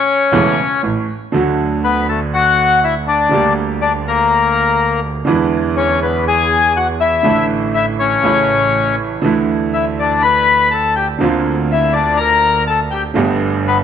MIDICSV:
0, 0, Header, 1, 4, 480
1, 0, Start_track
1, 0, Key_signature, 2, "major"
1, 0, Tempo, 495050
1, 1295, Time_signature, 4, 2, 24, 8
1, 9919, Tempo, 488202
1, 13464, End_track
2, 0, Start_track
2, 0, Title_t, "Bandoneon"
2, 0, Program_c, 0, 23
2, 0, Note_on_c, 0, 61, 68
2, 0, Note_on_c, 0, 73, 92
2, 786, Note_off_c, 0, 61, 0
2, 795, Note_off_c, 0, 73, 0
2, 1786, Note_on_c, 0, 71, 83
2, 1789, Note_on_c, 0, 59, 57
2, 2007, Note_off_c, 0, 71, 0
2, 2009, Note_off_c, 0, 59, 0
2, 2024, Note_on_c, 0, 69, 72
2, 2040, Note_on_c, 0, 57, 60
2, 2131, Note_off_c, 0, 69, 0
2, 2143, Note_off_c, 0, 57, 0
2, 2265, Note_on_c, 0, 78, 113
2, 2273, Note_on_c, 0, 66, 79
2, 2711, Note_off_c, 0, 66, 0
2, 2752, Note_on_c, 0, 64, 71
2, 2754, Note_off_c, 0, 78, 0
2, 2754, Note_on_c, 0, 76, 88
2, 2856, Note_off_c, 0, 64, 0
2, 2857, Note_off_c, 0, 76, 0
2, 2982, Note_on_c, 0, 62, 62
2, 2990, Note_on_c, 0, 74, 80
2, 3423, Note_off_c, 0, 62, 0
2, 3427, Note_off_c, 0, 74, 0
2, 3700, Note_on_c, 0, 74, 89
2, 3703, Note_on_c, 0, 62, 72
2, 3805, Note_off_c, 0, 74, 0
2, 3808, Note_off_c, 0, 62, 0
2, 3951, Note_on_c, 0, 70, 90
2, 3961, Note_on_c, 0, 58, 71
2, 4847, Note_off_c, 0, 70, 0
2, 4852, Note_off_c, 0, 58, 0
2, 5592, Note_on_c, 0, 61, 62
2, 5599, Note_on_c, 0, 73, 83
2, 5812, Note_off_c, 0, 61, 0
2, 5816, Note_off_c, 0, 73, 0
2, 5839, Note_on_c, 0, 71, 76
2, 5841, Note_on_c, 0, 59, 62
2, 6055, Note_off_c, 0, 71, 0
2, 6056, Note_off_c, 0, 59, 0
2, 6087, Note_on_c, 0, 68, 83
2, 6090, Note_on_c, 0, 80, 109
2, 6522, Note_off_c, 0, 68, 0
2, 6561, Note_on_c, 0, 78, 88
2, 6562, Note_on_c, 0, 66, 69
2, 6570, Note_off_c, 0, 80, 0
2, 6665, Note_off_c, 0, 78, 0
2, 6666, Note_off_c, 0, 66, 0
2, 6790, Note_on_c, 0, 64, 62
2, 6791, Note_on_c, 0, 76, 80
2, 7233, Note_off_c, 0, 64, 0
2, 7233, Note_off_c, 0, 76, 0
2, 7510, Note_on_c, 0, 76, 88
2, 7516, Note_on_c, 0, 64, 70
2, 7617, Note_off_c, 0, 76, 0
2, 7621, Note_off_c, 0, 64, 0
2, 7750, Note_on_c, 0, 73, 86
2, 7759, Note_on_c, 0, 61, 79
2, 8680, Note_off_c, 0, 73, 0
2, 8685, Note_off_c, 0, 61, 0
2, 9440, Note_on_c, 0, 76, 75
2, 9448, Note_on_c, 0, 64, 64
2, 9547, Note_off_c, 0, 76, 0
2, 9554, Note_off_c, 0, 64, 0
2, 9689, Note_on_c, 0, 74, 78
2, 9707, Note_on_c, 0, 62, 64
2, 9906, Note_off_c, 0, 74, 0
2, 9907, Note_on_c, 0, 83, 112
2, 9916, Note_off_c, 0, 62, 0
2, 9934, Note_on_c, 0, 71, 92
2, 10374, Note_off_c, 0, 71, 0
2, 10392, Note_on_c, 0, 81, 86
2, 10408, Note_off_c, 0, 83, 0
2, 10418, Note_on_c, 0, 69, 73
2, 10618, Note_off_c, 0, 81, 0
2, 10632, Note_off_c, 0, 69, 0
2, 10635, Note_on_c, 0, 79, 73
2, 10649, Note_on_c, 0, 67, 57
2, 10744, Note_off_c, 0, 79, 0
2, 10755, Note_off_c, 0, 67, 0
2, 11381, Note_on_c, 0, 76, 76
2, 11388, Note_on_c, 0, 64, 64
2, 11589, Note_on_c, 0, 74, 77
2, 11594, Note_off_c, 0, 76, 0
2, 11598, Note_off_c, 0, 64, 0
2, 11608, Note_on_c, 0, 62, 66
2, 11825, Note_on_c, 0, 82, 108
2, 11826, Note_off_c, 0, 62, 0
2, 11840, Note_off_c, 0, 74, 0
2, 11857, Note_on_c, 0, 70, 92
2, 12275, Note_off_c, 0, 82, 0
2, 12292, Note_off_c, 0, 70, 0
2, 12321, Note_on_c, 0, 81, 85
2, 12349, Note_on_c, 0, 69, 70
2, 12427, Note_off_c, 0, 81, 0
2, 12449, Note_off_c, 0, 69, 0
2, 12552, Note_on_c, 0, 79, 75
2, 12574, Note_on_c, 0, 67, 60
2, 12661, Note_off_c, 0, 79, 0
2, 12678, Note_off_c, 0, 67, 0
2, 13305, Note_on_c, 0, 59, 59
2, 13311, Note_on_c, 0, 71, 76
2, 13407, Note_off_c, 0, 59, 0
2, 13412, Note_off_c, 0, 71, 0
2, 13464, End_track
3, 0, Start_track
3, 0, Title_t, "Grand piano"
3, 0, Program_c, 1, 0
3, 315, Note_on_c, 1, 49, 64
3, 316, Note_on_c, 1, 40, 80
3, 316, Note_on_c, 1, 57, 59
3, 318, Note_on_c, 1, 28, 80
3, 318, Note_on_c, 1, 64, 74
3, 319, Note_on_c, 1, 59, 65
3, 522, Note_off_c, 1, 40, 0
3, 522, Note_off_c, 1, 49, 0
3, 522, Note_off_c, 1, 57, 0
3, 523, Note_off_c, 1, 28, 0
3, 523, Note_off_c, 1, 64, 0
3, 524, Note_off_c, 1, 59, 0
3, 805, Note_on_c, 1, 45, 50
3, 806, Note_on_c, 1, 33, 53
3, 1012, Note_off_c, 1, 33, 0
3, 1012, Note_off_c, 1, 45, 0
3, 1280, Note_on_c, 1, 50, 68
3, 1292, Note_on_c, 1, 54, 49
3, 1299, Note_on_c, 1, 38, 66
3, 1304, Note_on_c, 1, 57, 51
3, 1320, Note_on_c, 1, 66, 60
3, 3118, Note_off_c, 1, 54, 0
3, 3121, Note_off_c, 1, 38, 0
3, 3121, Note_off_c, 1, 50, 0
3, 3123, Note_off_c, 1, 57, 0
3, 3132, Note_off_c, 1, 66, 0
3, 3192, Note_on_c, 1, 50, 55
3, 3206, Note_on_c, 1, 55, 52
3, 3207, Note_off_c, 1, 50, 0
3, 3213, Note_on_c, 1, 50, 64
3, 3215, Note_on_c, 1, 38, 61
3, 3224, Note_on_c, 1, 58, 53
3, 3235, Note_on_c, 1, 67, 63
3, 5013, Note_off_c, 1, 55, 0
3, 5017, Note_off_c, 1, 50, 0
3, 5018, Note_off_c, 1, 38, 0
3, 5022, Note_off_c, 1, 58, 0
3, 5028, Note_off_c, 1, 67, 0
3, 5087, Note_on_c, 1, 50, 61
3, 5100, Note_on_c, 1, 56, 54
3, 5107, Note_on_c, 1, 40, 67
3, 5111, Note_on_c, 1, 52, 68
3, 5114, Note_on_c, 1, 59, 53
3, 5127, Note_on_c, 1, 64, 66
3, 6914, Note_off_c, 1, 50, 0
3, 6921, Note_off_c, 1, 56, 0
3, 6924, Note_off_c, 1, 40, 0
3, 6926, Note_off_c, 1, 52, 0
3, 6928, Note_off_c, 1, 59, 0
3, 6934, Note_off_c, 1, 64, 0
3, 7009, Note_on_c, 1, 50, 60
3, 7022, Note_on_c, 1, 52, 54
3, 7026, Note_on_c, 1, 33, 67
3, 7026, Note_on_c, 1, 45, 65
3, 7033, Note_on_c, 1, 57, 50
3, 7047, Note_on_c, 1, 64, 61
3, 7930, Note_off_c, 1, 50, 0
3, 7937, Note_off_c, 1, 52, 0
3, 7939, Note_off_c, 1, 33, 0
3, 7939, Note_off_c, 1, 45, 0
3, 7942, Note_off_c, 1, 57, 0
3, 7949, Note_off_c, 1, 64, 0
3, 7971, Note_on_c, 1, 49, 60
3, 7985, Note_on_c, 1, 52, 48
3, 7989, Note_on_c, 1, 33, 64
3, 7992, Note_on_c, 1, 45, 66
3, 7997, Note_on_c, 1, 57, 51
3, 8012, Note_on_c, 1, 64, 63
3, 8901, Note_off_c, 1, 49, 0
3, 8908, Note_off_c, 1, 52, 0
3, 8910, Note_off_c, 1, 33, 0
3, 8911, Note_off_c, 1, 45, 0
3, 8914, Note_off_c, 1, 57, 0
3, 8921, Note_off_c, 1, 64, 0
3, 8936, Note_on_c, 1, 50, 67
3, 8950, Note_on_c, 1, 52, 48
3, 8959, Note_on_c, 1, 38, 64
3, 8962, Note_on_c, 1, 57, 54
3, 8975, Note_on_c, 1, 64, 61
3, 10779, Note_off_c, 1, 52, 0
3, 10782, Note_off_c, 1, 50, 0
3, 10784, Note_off_c, 1, 38, 0
3, 10786, Note_off_c, 1, 57, 0
3, 10792, Note_off_c, 1, 64, 0
3, 10857, Note_on_c, 1, 50, 59
3, 10872, Note_off_c, 1, 50, 0
3, 10875, Note_on_c, 1, 58, 52
3, 10880, Note_on_c, 1, 38, 70
3, 10882, Note_on_c, 1, 50, 72
3, 10888, Note_on_c, 1, 60, 54
3, 10903, Note_on_c, 1, 65, 68
3, 12696, Note_off_c, 1, 58, 0
3, 12699, Note_off_c, 1, 38, 0
3, 12699, Note_off_c, 1, 50, 0
3, 12703, Note_off_c, 1, 60, 0
3, 12710, Note_off_c, 1, 65, 0
3, 12779, Note_on_c, 1, 50, 57
3, 12789, Note_on_c, 1, 57, 52
3, 12794, Note_on_c, 1, 43, 70
3, 12798, Note_on_c, 1, 31, 72
3, 12807, Note_on_c, 1, 59, 57
3, 12816, Note_on_c, 1, 67, 61
3, 13464, Note_off_c, 1, 31, 0
3, 13464, Note_off_c, 1, 43, 0
3, 13464, Note_off_c, 1, 50, 0
3, 13464, Note_off_c, 1, 57, 0
3, 13464, Note_off_c, 1, 59, 0
3, 13464, Note_off_c, 1, 67, 0
3, 13464, End_track
4, 0, Start_track
4, 0, Title_t, "Double bass"
4, 0, Program_c, 2, 43
4, 317, Note_on_c, 2, 28, 89
4, 523, Note_off_c, 2, 28, 0
4, 808, Note_on_c, 2, 33, 57
4, 1013, Note_off_c, 2, 33, 0
4, 1295, Note_on_c, 2, 38, 74
4, 3119, Note_off_c, 2, 38, 0
4, 3222, Note_on_c, 2, 38, 68
4, 5021, Note_off_c, 2, 38, 0
4, 5108, Note_on_c, 2, 40, 73
4, 6924, Note_off_c, 2, 40, 0
4, 7022, Note_on_c, 2, 33, 69
4, 7937, Note_off_c, 2, 33, 0
4, 7979, Note_on_c, 2, 33, 69
4, 8905, Note_off_c, 2, 33, 0
4, 8954, Note_on_c, 2, 38, 67
4, 10781, Note_off_c, 2, 38, 0
4, 10876, Note_on_c, 2, 38, 73
4, 12696, Note_off_c, 2, 38, 0
4, 12798, Note_on_c, 2, 31, 83
4, 13464, Note_off_c, 2, 31, 0
4, 13464, End_track
0, 0, End_of_file